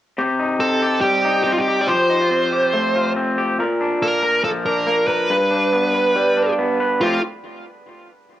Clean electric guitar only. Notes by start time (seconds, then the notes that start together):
0.18 C3 G4
0.39 D#4
0.60 C4
0.82 G4
1.03 G3
1.25 D#4
1.46 C4
1.68 G4
1.89 F3 G4
2.10 D#4
2.20 F4
2.31 C4
2.52 G4
2.74 A3
2.96 F4
3.16 C4
3.38 G4
3.59 A#2 A#4
3.81 D4
4.02 A#3
4.23 A#4
4.44 F3
4.66 D4
4.87 A#3
5.09 A#4
5.30 G2 B4
5.51 D4
5.73 B3
5.94 B4
6.16 G3
6.37 D4
6.58 B3
6.80 B4
7.01 F3 A3 C4 F4 G4